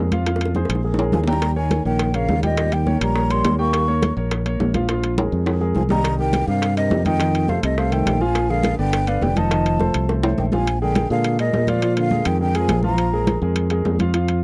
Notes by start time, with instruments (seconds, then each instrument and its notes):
Already playing: fingered electric bass F2
0.12 grand piano F3 F4 F5, high bongo, high conga, high timbale
0.26 grand piano F3 F4 F5, high bongo, high conga, high timbale
0.36 high bongo
0.40 high conga, high timbale
0.45 high bongo
0.55 grand piano G#3 G#4 C5, low bongo, high conga, low timbale
0.65 high bongo
0.69 fingered electric bass A#1, high conga, high timbale
0.75 low bongo
0.83 grand piano G#3 G#4 A#4, high conga
0.94 low bongo, high conga
0.98 grand piano G#3 G#4 A#4, high timbale
1.12 fingered electric bass D#2, trombone F3, flute G#5, low bongo, high conga, low timbale
1.24 trombone G3, flute A#5, low bongo, low timbale
1.28 grand piano G3 G4 G5
1.33 low bongo
1.42 high bongo, high conga, high timbale
1.56 trombone D#3, grand piano A#3 A#4 C#5, flute G#5, high bongo, high conga
1.71 high bongo, high conga, high timbale, low timbale
1.85 fingered electric bass A#1, trombone D#3, grand piano A#3 A#4 C#5, flute G5
1.99 high bongo, high conga, high timbale
2.14 trombone C#3, grand piano A#3 A#4 C#5, flute F5, high bongo, high conga, high timbale
2.28 fingered electric bass D#2, high bongo, low bongo, high conga, low timbale
2.43 trombone A#2, grand piano G3 G4 G5, flute D#5, high bongo, high conga, high timbale
2.57 grand piano G3 G4 G5, high bongo, high conga, high timbale
2.72 trombone D#3, flute G5, high bongo, high conga, high timbale
2.86 grand piano A#3 A#4 C#5, high bongo, high conga, low timbale
3.01 fingered electric bass A#1, trombone G3, flute A#5, high conga, high timbale
3.15 grand piano A#3 A#4 C#5, high bongo, high conga
3.30 trombone G3, grand piano A#3 A#4 C#5, flute C6, high bongo, high conga, high timbale
3.45 fingered electric bass D#2, high bongo, low bongo, high conga, high timbale, low timbale
3.59 grand piano G3 G4 G5, trombone A#3, flute C#6, high bongo
3.73 high bongo, high conga, high timbale
3.88 grand piano A#3 A#4 C#5, high bongo, high conga
4.02 high bongo, high conga, high timbale, low timbale
4.17 fingered electric bass A#1, grand piano A#3 A#4 C#5
4.31 high bongo, high conga, high timbale
4.46 grand piano A#3 A#4 C#5, high bongo, high conga, high timbale
4.60 fingered electric bass A#1, high bongo, low bongo, high conga, low timbale
4.74 grand piano F3 F4 F5, high bongo, high conga, high timbale
4.89 grand piano F3 F4 F5, high bongo, high conga, high timbale
5.03 high bongo, high conga, high timbale
5.18 grand piano G#3 G#4 A#4, high bongo, high conga, high timbale
5.32 fingered electric bass F2, high conga
5.46 grand piano G#3 G#4 A#4, high bongo, high conga, high timbale
5.61 grand piano G#3 G#4 A#4, high bongo, high conga
5.75 fingered electric bass C2, trombone F3, flute G#5, high bongo, low bongo, high conga
5.89 grand piano D#3 D#4 D#5, trombone G3, flute A#5, high bongo, high conga, low timbale
6.04 high bongo, high conga, high timbale
6.19 trombone D#3, grand piano G3 G4 A#4, flute G5, high bongo, high conga
6.33 high bongo, high conga, high timbale, low timbale
6.47 fingered electric bass G2, trombone C3, grand piano G3 G4 A#4, flute F5
6.62 high bongo, high conga, high timbale
6.76 trombone C3, grand piano G3 G4 A#4, flute D#5, high bongo, high conga, high timbale
6.90 fingered electric bass F2, high bongo, low bongo, high conga, low timbale
7.05 grand piano D#3 D#4 D#5, trombone D#3, flute G5, high bongo, high conga, high timbale
7.19 grand piano D#3 D#4 D#5, high bongo, high conga, high timbale
7.34 high bongo, high conga, high timbale
7.48 trombone C3, grand piano A3 A4 C5, flute F5, high bongo, high conga, low timbale
7.63 fingered electric bass C2, trombone C3, flute D#5, high conga, high timbale
7.77 trombone C3, grand piano A3 A4 C5, flute F5, high bongo, high conga
7.91 trombone D#3, grand piano A3 A4 C5, flute G5, high bongo, high conga, high timbale
8.06 fingered electric bass A#1, high bongo, low bongo, high conga, high timbale, low timbale
8.21 grand piano F3 F4 F5, trombone F3, flute G#5, high bongo
8.35 high bongo, high conga, high timbale
8.49 trombone D3, grand piano G#3 G#4 A#4, flute F5, high bongo, high conga
8.63 high bongo, high conga, high timbale, low timbale
8.79 fingered electric bass G1, trombone D3, grand piano B3 B4 D5, flute G5
8.93 high bongo, high conga, high timbale
9.07 trombone D3, grand piano B3 B4 D5, flute F5, high bongo, high conga, high timbale
9.21 fingered electric bass F1, trombone D3, flute G5, high bongo, low bongo, high conga, low timbale
9.36 grand piano D#3 D#4 D#5, trombone F3, flute A5, high bongo, high conga, high timbale
9.51 grand piano D#3 D#4 D#5, high bongo, high conga, high timbale
9.65 high bongo, high conga, high timbale
9.79 grand piano A3 A4 C5, high bongo, high conga, low timbale
9.94 fingered electric bass C2, high conga, high timbale
10.09 grand piano A3 A4 C5, high bongo, high conga
10.23 grand piano A3 A4 C5, high bongo, high conga, high timbale
10.38 fingered electric bass A#1, trombone D#3, flute G5, low bongo, high conga
10.52 grand piano F3 F4 F5, trombone F3, flute G#5, low bongo, high conga, low timbale
10.67 high conga, high timbale
10.81 trombone D3, grand piano G#3 G#4 A#4, flute G5, high conga
10.95 high conga, high timbale, low timbale
11.10 fingered electric bass A#2, trombone D3, grand piano G#3 G#4 A#4, flute F5
11.24 high conga, high timbale
11.39 trombone A#2, grand piano G#3 G#4 A#4, flute D#5, high conga, high timbale
11.53 fingered electric bass A#2, high conga, low timbale
11.67 trombone A#2, grand piano F3 F4 F5, flute D5, high conga, high timbale
11.81 grand piano F3 F4 F5, high conga, high timbale
11.96 trombone D3, flute F5, high conga, high timbale
12.11 grand piano G#3 G#4 A#4, high conga, low timbale
12.25 fingered electric bass F2, trombone D#3, flute G5, high conga, high timbale
12.39 trombone D3, grand piano G#3 G#4 A#4, flute G5, high conga
12.54 trombone F3, grand piano G#3 G#4 A#4, flute G#5, high conga, high timbale
12.68 fingered electric bass A#1, high conga, high timbale, low timbale
12.83 grand piano F3 F4 F5, trombone F3, flute A#5, high conga
12.97 high conga, high timbale
13.12 grand piano G#3 G#4 A#4, high conga
13.27 high conga, high timbale, low timbale
13.42 fingered electric bass F2, grand piano G#3 G#4 A#4
13.56 high conga, high timbale
13.70 grand piano G#3 G#4 A#4, high conga, high timbale
13.85 fingered electric bass F2, high conga, low timbale
13.99 grand piano F3 F4 F5, high conga, high timbale
14.14 grand piano F3 F4 F5, high conga, high timbale
14.28 high conga, high timbale